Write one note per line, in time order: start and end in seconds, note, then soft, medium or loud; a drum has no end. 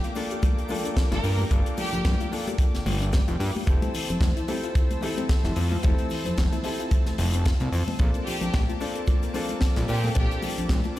0.00 0.12 A#3 medium
0.00 3.63 A#3 medium
0.00 0.13 D4 medium
0.00 0.13 F4 medium
0.00 0.08 F4 loud
0.00 0.13 A4 medium
0.00 3.63 G5 medium
0.00 3.63 D6 medium
0.00 closed hi-hat medium
0.05 cabasa soft
0.15 0.67 A#3 medium
0.15 0.25 D4 medium
0.15 0.67 D4 medium
0.15 0.67 F4 medium
0.15 0.67 A4 medium
0.15 open hi-hat loud
0.15 muted conga soft
0.15 cabasa medium
0.30 0.39 G4 medium
0.30 closed hi-hat medium
0.30 cabasa soft
0.42 0.53 F3 medium
0.42 kick loud
0.42 closed hi-hat loud
0.42 muted conga medium
0.42 cabasa soft
0.58 0.66 A#3 medium
0.58 closed hi-hat medium
0.58 cabasa soft
0.68 0.76 F3 medium
0.68 1.47 A#3 medium
0.68 1.48 D4 medium
0.68 1.48 F4 medium
0.68 1.49 A4 loud
0.68 open hi-hat loud
0.68 high conga medium
0.68 cabasa medium
0.84 0.90 D4 medium
0.84 closed hi-hat medium
0.84 muted conga medium
0.84 cabasa soft
0.97 1.11 F3 loud
0.97 kick loud
0.97 snare loud
0.97 closed hi-hat loud
0.97 cabasa medium
1.11 1.21 G1 medium
1.11 1.17 F4 loud
1.11 1.36 A#4 loud
1.11 snare soft
1.11 closed hi-hat medium
1.11 muted conga medium
1.11 cabasa soft
1.24 1.45 G2 medium
1.24 1.34 D4 medium
1.24 open hi-hat medium
1.24 cabasa medium
1.39 1.47 G4 medium
1.39 high conga medium
1.39 cabasa soft
1.50 1.62 G1 loud
1.50 1.61 F3 medium
1.50 2.29 A#3 medium
1.50 2.29 D4 medium
1.50 2.29 F4 medium
1.50 2.29 A4 medium
1.50 kick loud
1.50 closed hi-hat loud
1.50 muted conga soft
1.50 cabasa medium
1.66 1.74 A#3 medium
1.66 closed hi-hat medium
1.66 cabasa soft
1.77 1.84 F3 medium
1.77 2.20 G4 loud
1.77 open hi-hat loud
1.77 muted conga medium
1.77 cabasa medium
1.93 2.03 G1 soft
1.93 1.98 D4 medium
1.93 closed hi-hat medium
1.93 low conga medium
1.93 cabasa soft
2.05 2.16 G1 medium
2.05 2.19 F3 loud
2.05 kick loud
2.05 snare loud
2.05 closed hi-hat loud
2.05 high conga loud
2.05 cabasa soft
2.20 2.25 F4 loud
2.20 closed hi-hat medium
2.20 muted conga soft
2.20 cabasa soft
2.31 3.64 A#3 medium
2.31 3.64 D4 medium
2.31 2.42 D4 medium
2.31 3.64 F4 medium
2.31 3.65 A4 medium
2.31 open hi-hat loud
2.31 cabasa medium
2.47 2.55 G4 medium
2.47 closed hi-hat medium
2.47 muted conga medium
2.47 cabasa soft
2.58 2.69 F3 medium
2.58 kick loud
2.58 closed hi-hat loud
2.58 cabasa soft
2.74 2.84 G1 soft
2.74 2.82 A#3 medium
2.74 snare soft
2.74 closed hi-hat medium
2.74 cabasa soft
2.86 3.22 G1 loud
2.86 2.92 F3 medium
2.86 open hi-hat loud
2.86 muted conga medium
2.86 high conga medium
2.86 cabasa medium
3.01 3.06 D4 medium
3.01 closed hi-hat medium
3.01 cabasa soft
3.12 3.27 F3 loud
3.12 kick loud
3.12 snare loud
3.12 closed hi-hat loud
3.12 muted conga medium
3.12 cabasa medium
3.28 3.37 F1 loud
3.28 3.32 F4 loud
3.28 closed hi-hat medium
3.28 cabasa soft
3.40 3.51 G2 loud
3.40 3.50 D4 medium
3.40 open hi-hat loud
3.40 cabasa medium
3.55 3.63 G4 medium
3.55 muted conga medium
3.55 high conga medium
3.55 cabasa soft
3.66 3.78 F1 loud
3.66 3.77 E3 medium
3.66 4.45 C4 medium
3.66 4.45 E4 medium
3.66 4.46 G4 medium
3.66 4.46 A4 medium
3.66 7.96 C5 medium
3.66 10.99 A5 medium
3.66 7.96 E6 medium
3.66 kick loud
3.66 closed hi-hat loud
3.66 cabasa medium
3.82 3.90 A3 medium
3.82 closed hi-hat medium
3.82 muted conga medium
3.82 cabasa soft
3.94 4.00 E3 medium
3.94 open hi-hat loud
3.94 cabasa loud
4.09 4.19 F1 soft
4.09 4.14 C4 medium
4.09 closed hi-hat medium
4.09 low conga medium
4.09 cabasa soft
4.21 4.32 F1 medium
4.21 4.36 E3 loud
4.21 kick loud
4.21 snare loud
4.21 closed hi-hat loud
4.21 muted conga medium
4.21 high conga loud
4.21 cabasa soft
4.36 4.41 E4 loud
4.36 closed hi-hat medium
4.36 cabasa soft
4.48 4.99 C4 medium
4.48 4.58 C4 medium
4.48 4.99 E4 medium
4.48 4.99 G4 medium
4.48 5.00 A4 medium
4.48 open hi-hat loud
4.48 muted conga medium
4.48 cabasa medium
4.64 4.71 F4 medium
4.64 closed hi-hat medium
4.64 cabasa soft
4.75 4.85 E3 medium
4.75 kick loud
4.75 closed hi-hat loud
4.75 cabasa soft
4.91 4.98 A3 medium
4.91 closed hi-hat medium
4.91 muted conga medium
4.91 cabasa soft
5.01 5.08 E3 medium
5.01 5.80 C4 medium
5.01 5.80 E4 medium
5.01 5.81 G4 medium
5.01 5.81 A4 loud
5.01 open hi-hat loud
5.01 high conga medium
5.01 cabasa medium
5.17 5.22 C4 medium
5.17 closed hi-hat medium
5.17 muted conga medium
5.17 cabasa soft
5.29 5.44 E3 loud
5.29 kick loud
5.29 snare loud
5.29 closed hi-hat medium
5.29 cabasa medium
5.44 5.53 F1 medium
5.44 5.49 E4 loud
5.44 snare soft
5.44 closed hi-hat medium
5.44 cabasa soft
5.56 5.77 F2 medium
5.56 5.66 C4 medium
5.56 open hi-hat loud
5.56 muted conga medium
5.56 cabasa medium
5.72 5.79 F4 medium
5.72 high conga loud
5.72 cabasa soft
5.83 5.95 F1 loud
5.83 5.93 E3 medium
5.83 6.61 C4 medium
5.83 6.62 E4 medium
5.83 6.62 G4 medium
5.83 6.62 A4 loud
5.83 kick loud
5.83 closed hi-hat medium
5.83 muted conga medium
5.83 cabasa soft
5.98 6.06 A3 medium
5.98 closed hi-hat medium
5.98 cabasa soft
6.10 6.16 E3 medium
6.10 open hi-hat loud
6.10 cabasa medium
6.25 6.35 F1 soft
6.25 6.30 C4 medium
6.25 closed hi-hat medium
6.25 muted conga soft
6.25 low conga medium
6.25 cabasa soft
6.37 6.49 F1 medium
6.37 6.52 E3 loud
6.37 kick loud
6.37 snare loud
6.37 closed hi-hat loud
6.37 high conga medium
6.37 cabasa soft
6.52 6.57 E4 loud
6.52 closed hi-hat medium
6.52 muted conga medium
6.52 cabasa soft
6.63 7.96 C4 medium
6.63 6.74 C4 medium
6.63 7.96 E4 medium
6.63 7.97 G4 medium
6.63 7.97 A4 medium
6.63 open hi-hat loud
6.63 cabasa medium
6.79 6.87 F4 medium
6.79 closed hi-hat medium
6.79 cabasa soft
6.91 7.01 E3 medium
6.91 kick loud
6.91 closed hi-hat medium
6.91 muted conga medium
6.91 cabasa medium
7.06 7.16 F1 soft
7.06 7.14 A3 medium
7.06 snare soft
7.06 closed hi-hat medium
7.06 cabasa soft
7.18 7.54 F1 loud
7.18 7.28 F3 medium
7.18 open hi-hat loud
7.18 muted conga medium
7.18 high conga medium
7.18 cabasa medium
7.33 7.38 C4 medium
7.33 closed hi-hat medium
7.33 cabasa soft
7.45 7.52 F4 loud
7.45 kick loud
7.45 snare loud
7.45 closed hi-hat medium
7.45 cabasa medium
7.60 7.69 C2 loud
7.60 7.72 C4 loud
7.60 closed hi-hat medium
7.60 muted conga medium
7.60 cabasa soft
7.72 7.84 F2 loud
7.72 7.82 E3 medium
7.72 open hi-hat loud
7.72 cabasa medium
7.88 7.95 C4 medium
7.88 muted conga medium
7.88 high conga medium
7.88 cabasa soft
7.99 8.11 A#1 loud
7.99 8.09 F3 medium
7.99 10.99 A#3 medium
7.99 8.77 C4 medium
7.99 8.78 D4 medium
7.99 8.78 F4 medium
7.99 8.78 A4 medium
7.99 10.99 D6 medium
7.99 kick loud
7.99 closed hi-hat loud
7.99 cabasa medium
8.14 8.22 A#3 medium
8.14 closed hi-hat medium
8.14 muted conga soft
8.14 cabasa soft
8.26 8.32 F3 medium
8.26 8.51 G4 medium
8.26 open hi-hat loud
8.26 cabasa loud
8.41 8.51 A#1 soft
8.41 8.46 D4 medium
8.41 closed hi-hat medium
8.41 muted conga medium
8.41 low conga medium
8.41 cabasa soft
8.53 8.65 A#1 medium
8.53 8.68 F3 loud
8.53 kick loud
8.53 snare loud
8.53 closed hi-hat medium
8.53 high conga loud
8.53 cabasa soft
8.69 8.73 F4 loud
8.69 closed hi-hat medium
8.69 cabasa soft
8.80 9.32 C4 medium
8.80 9.32 D4 medium
8.80 8.90 D4 medium
8.80 9.32 F4 medium
8.80 9.32 A4 medium
8.80 open hi-hat medium
8.80 muted conga soft
8.80 cabasa medium
8.95 9.03 A4 medium
8.95 closed hi-hat medium
8.95 cabasa soft
9.07 9.17 F3 medium
9.07 kick loud
9.07 closed hi-hat medium
9.07 muted conga medium
9.07 cabasa medium
9.22 9.30 A#3 medium
9.22 closed hi-hat medium
9.22 cabasa soft
9.34 9.41 F3 medium
9.34 10.12 C4 medium
9.34 10.13 D4 medium
9.34 10.13 F4 medium
9.34 10.13 A4 loud
9.34 open hi-hat loud
9.34 high conga medium
9.34 cabasa loud
9.49 9.54 D4 medium
9.49 closed hi-hat medium
9.49 muted conga soft
9.49 cabasa soft
9.61 9.76 F3 loud
9.61 kick loud
9.61 snare loud
9.61 closed hi-hat loud
9.61 cabasa medium
9.76 9.86 A#1 medium
9.76 9.81 F4 loud
9.76 snare soft
9.76 closed hi-hat medium
9.76 muted conga medium
9.76 cabasa soft
9.88 10.10 A#2 medium
9.88 9.98 D4 medium
9.88 10.13 G4 medium
9.88 open hi-hat loud
9.88 cabasa loud
10.03 10.12 A4 medium
10.03 high conga medium
10.03 cabasa soft
10.15 10.27 A#1 loud
10.15 10.26 F3 medium
10.15 10.93 C4 medium
10.15 10.94 D4 medium
10.15 10.94 F4 medium
10.15 10.40 G4 medium
10.15 10.95 A4 loud
10.15 kick loud
10.15 closed hi-hat loud
10.15 muted conga medium
10.15 cabasa medium
10.31 10.39 A#3 medium
10.31 closed hi-hat medium
10.31 cabasa soft
10.42 10.49 F3 medium
10.42 open hi-hat loud
10.42 muted conga medium
10.42 cabasa loud
10.58 10.68 A#1 soft
10.58 10.63 D4 medium
10.58 closed hi-hat medium
10.58 low conga medium
10.58 cabasa soft
10.69 10.81 A#1 medium
10.69 10.84 F3 loud
10.69 kick loud
10.69 snare loud
10.69 closed hi-hat medium
10.69 high conga loud
10.69 cabasa medium
10.84 10.90 F4 loud
10.84 closed hi-hat medium
10.84 muted conga medium
10.84 cabasa soft
10.96 10.99 C4 medium